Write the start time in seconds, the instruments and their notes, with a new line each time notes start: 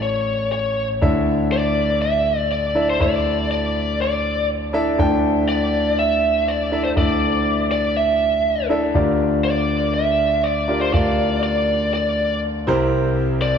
Already playing: grand piano A1 A2 E4 A4 C#5 E5 G5
0.03 lead electric guitar C#5
0.52 lead electric guitar C#5
1.01 grand piano D2 D3 D4 E4 A4 D5 E5
1.52 lead electric guitar D5
2.02 lead electric guitar E5
2.52 lead electric guitar D5
2.75 grand piano D4 E4 A4 D5 E5
2.90 lead electric guitar C5
2.99 grand piano D2 D3 D4 E4 A4 D5 E5, lead electric guitar D5
3.51 lead electric guitar D5
4.02 lead electric guitar D5
4.73 grand piano D4 E4 A4 D5 E5
4.98 grand piano D2 D3 D4 E4 A4 D5 G5
5.49 lead electric guitar D5
5.99 lead electric guitar E5
6.48 lead electric guitar D5
6.71 grand piano D4 E4 A4 D5 E5
6.84 lead electric guitar C5
6.96 grand piano D2 D3 D4 E4 A4 D5 E5, lead electric guitar D5
7.72 lead electric guitar D5
7.97 lead electric guitar E5
8.69 grand piano D4 E4 A4 D5 E5
8.94 grand piano D2 D3 D4 F4 G4 A#4 D5
9.45 lead electric guitar D5
9.94 lead electric guitar E5
10.44 lead electric guitar D5
10.68 grand piano D4 F4 G4 A#4 D5
10.81 lead electric guitar C5
10.93 grand piano D2 D3 D4 F4 G4 A#4 F5, lead electric guitar D5
11.43 lead electric guitar D5
11.94 lead electric guitar D5
12.67 grand piano C2 C3 C4 E4 G4 A#4 C5
13.42 lead electric guitar D5